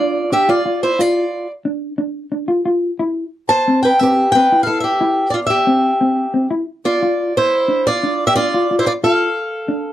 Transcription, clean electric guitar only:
0.00 0.22 D4 medium
0.32 0.44 D4 medium
0.49 0.61 F4 medium
0.66 0.89 F4 medium
0.99 1.23 F4 medium
1.65 1.89 D4 medium
1.98 2.22 D4 medium
2.32 2.44 D4 medium
2.48 2.61 F4 medium
2.66 2.90 F4 medium
2.99 3.24 E4 medium
3.68 3.91 C4 medium
4.01 4.25 C4 medium
4.35 4.47 C4 medium
4.52 4.64 E4 medium
4.67 4.91 E4 medium
5.01 5.25 E4 medium
5.67 5.91 C4 medium
6.01 6.25 C4 medium
6.34 6.46 C4 medium
6.51 6.63 E4 medium
7.03 7.26 F4 medium
7.68 7.92 D4 medium
8.03 8.27 D4 medium
8.37 8.49 D4 medium
8.54 8.66 F4 medium
8.71 8.94 F4 medium
9.04 9.27 F4 medium
9.68 9.92 D4 medium

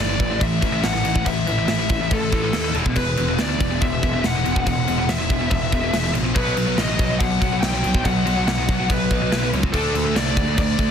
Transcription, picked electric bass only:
0.00 0.19 G1 medium
0.20 0.40 A1 medium
0.41 0.61 A1 loud
0.62 0.82 A1 medium
0.84 1.04 A1 medium
1.05 1.25 A1 medium
1.26 1.46 A1 medium
1.48 1.67 A1 medium
1.69 1.89 A1 medium
1.90 2.10 A1 medium
2.11 2.51 A1 loud
2.53 2.77 D#2 medium
2.75 2.95 E1 loud
2.96 3.16 E1 medium
3.18 3.38 E1 medium
3.39 3.59 D2 medium
3.60 3.80 E1 medium
3.82 4.01 E1 loud
4.03 4.23 E1 medium
4.24 4.44 E1 medium
4.46 4.65 E1 medium
4.67 4.86 E1 loud
4.88 5.08 E1 medium
5.09 5.29 E1 loud
5.30 5.50 E1 medium
5.52 5.91 E1 loud
5.93 6.13 E1 medium
6.15 6.34 A#1 medium
6.36 6.56 B1 medium
6.56 6.76 B1 medium
6.78 6.98 A1 loud
6.99 7.19 B1 medium
7.20 7.40 B1 medium
7.42 7.61 B1 medium
7.62 7.82 B1 loud
7.85 8.04 B1 medium
8.05 8.25 B1 loud
8.26 8.46 B1 medium
8.47 8.67 B1 loud
8.69 8.88 B1 medium
8.90 9.29 B1 loud
9.32 9.52 B1 medium
9.53 9.72 C#2 medium
9.74 9.93 D2 loud
9.94 10.14 D2 medium
10.16 10.36 C2 medium
10.37 10.57 D2 medium
10.58 10.77 D2 loud
10.79 10.91 D2 medium

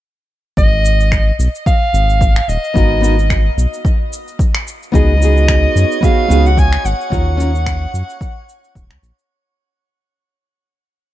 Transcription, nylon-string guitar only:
2.74 2.99 B3 medium
2.74 3.00 D#4 medium
2.74 3.00 F#4 medium
2.74 3.01 A#4 medium
3.01 3.14 B3 medium
3.01 3.15 D#4 medium
3.01 3.15 F#4 medium
3.01 3.16 A#4 medium
4.92 5.12 B3 medium
4.92 5.12 D#4 medium
4.92 5.13 F#4 medium
4.92 5.14 G#4 loud
5.17 5.98 B3 medium
5.17 5.99 D#4 medium
5.22 6.00 F#4 medium
5.22 6.02 G#4 medium
6.01 6.26 B3 medium
6.01 6.27 D#4 medium
6.01 6.27 F#4 medium
6.01 6.28 G#4 medium
6.28 6.48 B3 medium
6.28 6.49 D#4 medium
6.28 6.49 F#4 medium
6.28 6.50 G#4 medium
7.10 7.35 C#4 medium
7.10 7.36 F4 medium
7.10 7.37 A#4 medium
7.37 7.51 C#4 medium
7.37 7.51 F4 medium
7.37 7.53 A#4 medium

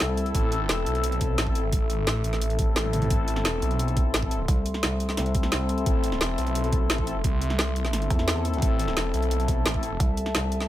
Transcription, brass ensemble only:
0.00 1.45 C4 medium
0.00 1.45 E4 medium
0.00 1.45 A4 loud
1.47 1.63 C4 medium
1.47 1.63 E4 medium
1.47 1.63 A4 loud
2.24 4.20 C4 medium
2.24 4.20 E4 medium
2.24 4.20 A4 loud
4.23 4.39 C4 medium
4.23 4.39 E4 medium
4.23 4.39 A4 medium
5.00 6.96 C4 medium
5.00 6.96 E4 medium
5.00 6.96 A4 loud
6.98 7.15 C4 medium
6.98 7.15 E4 medium
6.98 7.15 A4 loud
7.76 9.72 C4 medium
7.76 9.72 E4 medium
7.76 9.72 A4 loud
9.74 9.91 C4 medium
9.74 9.91 E4 medium
9.74 9.91 A4 loud
10.52 10.68 C4 medium
10.52 10.68 E4 medium
10.52 10.68 A4 loud

